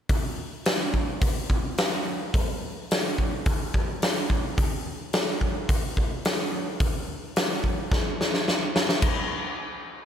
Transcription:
0, 0, Header, 1, 2, 480
1, 0, Start_track
1, 0, Tempo, 557621
1, 95, Time_signature, 4, 2, 24, 8
1, 8651, End_track
2, 0, Start_track
2, 0, Title_t, "Drums"
2, 78, Note_on_c, 9, 46, 51
2, 81, Note_on_c, 9, 36, 98
2, 164, Note_off_c, 9, 46, 0
2, 167, Note_off_c, 9, 36, 0
2, 562, Note_on_c, 9, 46, 54
2, 571, Note_on_c, 9, 38, 104
2, 648, Note_off_c, 9, 46, 0
2, 657, Note_off_c, 9, 38, 0
2, 807, Note_on_c, 9, 36, 67
2, 893, Note_off_c, 9, 36, 0
2, 1044, Note_on_c, 9, 46, 55
2, 1047, Note_on_c, 9, 36, 107
2, 1130, Note_off_c, 9, 46, 0
2, 1133, Note_off_c, 9, 36, 0
2, 1289, Note_on_c, 9, 36, 83
2, 1375, Note_off_c, 9, 36, 0
2, 1529, Note_on_c, 9, 46, 55
2, 1537, Note_on_c, 9, 38, 109
2, 1615, Note_off_c, 9, 46, 0
2, 1623, Note_off_c, 9, 38, 0
2, 2015, Note_on_c, 9, 36, 108
2, 2017, Note_on_c, 9, 46, 52
2, 2101, Note_off_c, 9, 36, 0
2, 2103, Note_off_c, 9, 46, 0
2, 2503, Note_on_c, 9, 46, 54
2, 2512, Note_on_c, 9, 38, 104
2, 2589, Note_off_c, 9, 46, 0
2, 2598, Note_off_c, 9, 38, 0
2, 2741, Note_on_c, 9, 36, 72
2, 2827, Note_off_c, 9, 36, 0
2, 2975, Note_on_c, 9, 46, 55
2, 2980, Note_on_c, 9, 36, 109
2, 3061, Note_off_c, 9, 46, 0
2, 3066, Note_off_c, 9, 36, 0
2, 3221, Note_on_c, 9, 36, 80
2, 3308, Note_off_c, 9, 36, 0
2, 3461, Note_on_c, 9, 46, 56
2, 3469, Note_on_c, 9, 38, 99
2, 3547, Note_off_c, 9, 46, 0
2, 3555, Note_off_c, 9, 38, 0
2, 3701, Note_on_c, 9, 36, 78
2, 3787, Note_off_c, 9, 36, 0
2, 3941, Note_on_c, 9, 36, 105
2, 3941, Note_on_c, 9, 46, 53
2, 4027, Note_off_c, 9, 46, 0
2, 4028, Note_off_c, 9, 36, 0
2, 4415, Note_on_c, 9, 46, 58
2, 4424, Note_on_c, 9, 38, 103
2, 4501, Note_off_c, 9, 46, 0
2, 4510, Note_off_c, 9, 38, 0
2, 4659, Note_on_c, 9, 36, 65
2, 4745, Note_off_c, 9, 36, 0
2, 4896, Note_on_c, 9, 46, 61
2, 4899, Note_on_c, 9, 36, 109
2, 4982, Note_off_c, 9, 46, 0
2, 4985, Note_off_c, 9, 36, 0
2, 5140, Note_on_c, 9, 36, 79
2, 5226, Note_off_c, 9, 36, 0
2, 5378, Note_on_c, 9, 46, 59
2, 5386, Note_on_c, 9, 38, 108
2, 5464, Note_off_c, 9, 46, 0
2, 5472, Note_off_c, 9, 38, 0
2, 5852, Note_on_c, 9, 46, 57
2, 5856, Note_on_c, 9, 36, 112
2, 5938, Note_off_c, 9, 46, 0
2, 5942, Note_off_c, 9, 36, 0
2, 6335, Note_on_c, 9, 46, 53
2, 6344, Note_on_c, 9, 38, 106
2, 6421, Note_off_c, 9, 46, 0
2, 6430, Note_off_c, 9, 38, 0
2, 6574, Note_on_c, 9, 36, 64
2, 6660, Note_off_c, 9, 36, 0
2, 6814, Note_on_c, 9, 36, 110
2, 6822, Note_on_c, 9, 38, 62
2, 6900, Note_off_c, 9, 36, 0
2, 6908, Note_off_c, 9, 38, 0
2, 7066, Note_on_c, 9, 38, 68
2, 7152, Note_off_c, 9, 38, 0
2, 7178, Note_on_c, 9, 38, 60
2, 7264, Note_off_c, 9, 38, 0
2, 7301, Note_on_c, 9, 38, 80
2, 7387, Note_off_c, 9, 38, 0
2, 7539, Note_on_c, 9, 38, 97
2, 7625, Note_off_c, 9, 38, 0
2, 7653, Note_on_c, 9, 38, 75
2, 7739, Note_off_c, 9, 38, 0
2, 7765, Note_on_c, 9, 49, 77
2, 7768, Note_on_c, 9, 36, 108
2, 7851, Note_off_c, 9, 49, 0
2, 7854, Note_off_c, 9, 36, 0
2, 8651, End_track
0, 0, End_of_file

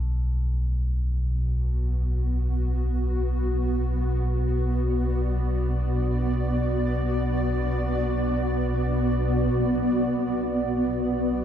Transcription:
0, 0, Header, 1, 4, 480
1, 0, Start_track
1, 0, Key_signature, 2, "minor"
1, 0, Tempo, 500000
1, 10987, End_track
2, 0, Start_track
2, 0, Title_t, "Ambient pad"
2, 0, Program_c, 0, 92
2, 433, Note_on_c, 0, 59, 73
2, 794, Note_on_c, 0, 66, 75
2, 4237, Note_on_c, 0, 74, 81
2, 10987, Note_off_c, 0, 59, 0
2, 10987, Note_off_c, 0, 66, 0
2, 10987, Note_off_c, 0, 74, 0
2, 10987, End_track
3, 0, Start_track
3, 0, Title_t, "Church bells"
3, 0, Program_c, 1, 14
3, 0, Note_on_c, 1, 50, 53
3, 0, Note_on_c, 1, 69, 54
3, 1517, Note_off_c, 1, 69, 0
3, 2062, Note_off_c, 1, 50, 0
3, 10987, End_track
4, 0, Start_track
4, 0, Title_t, "Synth drone"
4, 0, Program_c, 2, 95
4, 0, Note_on_c, 2, 35, 66
4, 0, Note_on_c, 2, 47, 57
4, 9115, Note_off_c, 2, 35, 0
4, 9119, Note_off_c, 2, 47, 0
4, 9127, Note_on_c, 2, 35, 61
4, 9131, Note_on_c, 2, 47, 67
4, 10987, Note_off_c, 2, 35, 0
4, 10987, Note_off_c, 2, 47, 0
4, 10987, End_track
0, 0, End_of_file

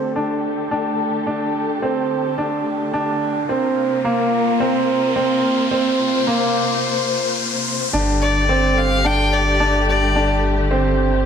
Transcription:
0, 0, Header, 1, 6, 480
1, 0, Start_track
1, 0, Key_signature, -2, "minor"
1, 0, Tempo, 555556
1, 1099, Time_signature, 4, 2, 24, 8
1, 9725, End_track
2, 0, Start_track
2, 0, Title_t, "Violin"
2, 0, Program_c, 0, 40
2, 7102, Note_on_c, 0, 74, 89
2, 7587, Note_on_c, 0, 77, 100
2, 7600, Note_off_c, 0, 74, 0
2, 7830, Note_on_c, 0, 79, 112
2, 7843, Note_off_c, 0, 77, 0
2, 8068, Note_on_c, 0, 74, 102
2, 8081, Note_off_c, 0, 79, 0
2, 8539, Note_off_c, 0, 74, 0
2, 8544, Note_on_c, 0, 74, 85
2, 8988, Note_off_c, 0, 74, 0
2, 9725, End_track
3, 0, Start_track
3, 0, Title_t, "Grand piano"
3, 0, Program_c, 1, 0
3, 136, Note_on_c, 1, 62, 76
3, 550, Note_off_c, 1, 62, 0
3, 616, Note_on_c, 1, 62, 80
3, 1030, Note_off_c, 1, 62, 0
3, 1093, Note_on_c, 1, 62, 78
3, 1508, Note_off_c, 1, 62, 0
3, 1576, Note_on_c, 1, 60, 73
3, 1989, Note_off_c, 1, 60, 0
3, 2056, Note_on_c, 1, 62, 80
3, 2469, Note_off_c, 1, 62, 0
3, 2535, Note_on_c, 1, 62, 85
3, 2949, Note_off_c, 1, 62, 0
3, 3016, Note_on_c, 1, 60, 79
3, 3430, Note_off_c, 1, 60, 0
3, 3496, Note_on_c, 1, 58, 85
3, 3909, Note_off_c, 1, 58, 0
3, 3977, Note_on_c, 1, 60, 90
3, 4390, Note_off_c, 1, 60, 0
3, 4457, Note_on_c, 1, 60, 89
3, 4870, Note_off_c, 1, 60, 0
3, 4936, Note_on_c, 1, 60, 88
3, 5350, Note_off_c, 1, 60, 0
3, 5417, Note_on_c, 1, 58, 78
3, 5830, Note_off_c, 1, 58, 0
3, 6855, Note_on_c, 1, 62, 88
3, 7269, Note_off_c, 1, 62, 0
3, 7336, Note_on_c, 1, 60, 86
3, 7749, Note_off_c, 1, 60, 0
3, 7814, Note_on_c, 1, 62, 90
3, 8228, Note_off_c, 1, 62, 0
3, 8294, Note_on_c, 1, 62, 90
3, 8708, Note_off_c, 1, 62, 0
3, 8775, Note_on_c, 1, 62, 90
3, 9189, Note_off_c, 1, 62, 0
3, 9253, Note_on_c, 1, 60, 87
3, 9668, Note_off_c, 1, 60, 0
3, 9725, End_track
4, 0, Start_track
4, 0, Title_t, "String section"
4, 0, Program_c, 2, 48
4, 0, Note_on_c, 2, 50, 65
4, 0, Note_on_c, 2, 57, 62
4, 0, Note_on_c, 2, 67, 58
4, 0, Note_on_c, 2, 69, 74
4, 2982, Note_off_c, 2, 67, 0
4, 2982, Note_off_c, 2, 69, 0
4, 2983, Note_off_c, 2, 50, 0
4, 2983, Note_off_c, 2, 57, 0
4, 3015, Note_on_c, 2, 70, 81
4, 3016, Note_on_c, 2, 58, 70
4, 3017, Note_on_c, 2, 48, 77
4, 3018, Note_on_c, 2, 65, 67
4, 4918, Note_off_c, 2, 70, 0
4, 4938, Note_on_c, 2, 72, 89
4, 6823, Note_off_c, 2, 48, 0
4, 6823, Note_off_c, 2, 58, 0
4, 6824, Note_off_c, 2, 65, 0
4, 6840, Note_off_c, 2, 72, 0
4, 6860, Note_on_c, 2, 50, 78
4, 6860, Note_on_c, 2, 57, 74
4, 6861, Note_on_c, 2, 55, 70
4, 6861, Note_on_c, 2, 67, 87
4, 9725, Note_off_c, 2, 50, 0
4, 9725, Note_off_c, 2, 55, 0
4, 9725, Note_off_c, 2, 57, 0
4, 9725, Note_off_c, 2, 67, 0
4, 9725, End_track
5, 0, Start_track
5, 0, Title_t, "Sub bass"
5, 0, Program_c, 3, 38
5, 6857, Note_on_c, 3, 31, 88
5, 9725, Note_off_c, 3, 31, 0
5, 9725, End_track
6, 0, Start_track
6, 0, Title_t, "Riser"
6, 0, Program_c, 4, 103
6, 0, Note_on_c, 4, 60, 70
6, 6859, Note_off_c, 4, 60, 0
6, 9725, End_track
0, 0, End_of_file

